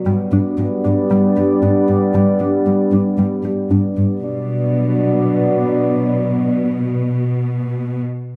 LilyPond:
<<
  \new Staff \with { instrumentName = "Synth pluck" } { \time 4/4 \key b \minor \tempo 4 = 115 g8 d'8 r8 d'8 g8 g'8 d'8 r8 | g8 d'8 r8 d'8 g8 g'8 d'8 r8 | r1 | r1 | }
  \new Staff \with { instrumentName = "Synth drone" } { \time 4/4 \key b \minor <g b d' d''>1~ | <g b d' d''>1 | <fis b d' d''>1~ | <fis b d' d''>1 | }
  \new Staff \with { instrumentName = "Cello section" } { \clef bass \time 4/4 \key b \minor g,8 g,8 g,8 g,8 g,8 g,8 g,8 g,8 | g,8 g,8 g,8 g,8 g,8 g,8 g,8 g,8 | b,1~ | b,1 | }
>>